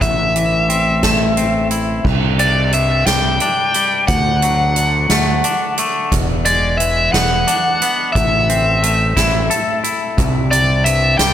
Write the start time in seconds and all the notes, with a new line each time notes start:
Already playing: E3
0.01 A1 A2 E5, kick, closed hi-hat
0.36 E3, closed hi-hat
0.69 C4, closed hi-hat
1.03 A3, kick, snare, closed hi-hat
1.37 C4, closed hi-hat
1.71 E4, closed hi-hat
2.04 C2, kick, crash
2.39 C3 D5, closed hi-hat
2.72 G2 E5, closed hi-hat
3.06 C2 G3 G5, snare, closed hi-hat
3.40 D4, closed hi-hat
3.74 G3, closed hi-hat
4.07 D2 F#5, kick, closed hi-hat
4.42 F#3, closed hi-hat
4.76 D3, closed hi-hat
5.10 D2 A3, snare, closed hi-hat
5.44 D4, closed hi-hat
5.77 A3, closed hi-hat
6.12 E1 E2, kick, closed hi-hat
6.45 G#3 D5, closed hi-hat
6.77 E3 E5, closed hi-hat
7.12 E1 B3 F#5, snare, closed hi-hat
7.47 D4, closed hi-hat
7.82 B3, closed hi-hat
8.12 A1 A2 E5, kick, closed hi-hat
8.49 C4, closed hi-hat
8.83 A3, closed hi-hat
9.16 A1 E4, kick, snare, closed hi-hat
9.50 A4, closed hi-hat
9.84 E4, closed hi-hat
10.17 C2, kick, closed hi-hat
10.51 C3 D5, closed hi-hat
10.84 G2 E5, closed hi-hat
11.18 C2 G3 G5, snare, closed hi-hat